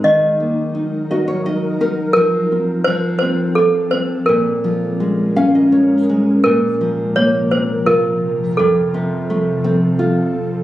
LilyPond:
<<
  \new Staff \with { instrumentName = "Toy piano" } { \time 3/4 \key bes \minor \tempo 4 = 85 ees''2~ ees''8 r8 | bes'4 c''8 c''8 a'8 c''8 | bes'2~ bes'8 r8 | bes'4 des''8 c''8 bes'4 |
a'2~ a'8 r8 | }
  \new Staff \with { instrumentName = "Ambient pad" } { \time 3/4 \key bes \minor << { bes'2.~ | bes'4 a'2 | bes'2. | bes'2. |
a'2. | } \\ { <ges ees'>2. | <f c'>2. | <aes des'>2. | <c f>2.~ |
<c f>2. | } >> }
  \new Staff \with { instrumentName = "Nylon-string guitar" } { \time 3/4 \key bes \minor << { r4. ees''16 des''16 ees''8 bes'8 | r2. | r4. f''16 ees''16 des''4 | r2. |
r2. | } \\ { ees8 bes8 ees'8 ges'4 ees'8 | f8 c'8 f8 c'8 f'8 c'8 | bes,8 f8 aes8 des'4 aes8 | bes,8 f8 bes8 c'8 f'4 |
f,8 c8 a8 c'8 f'4 | } >> }
>>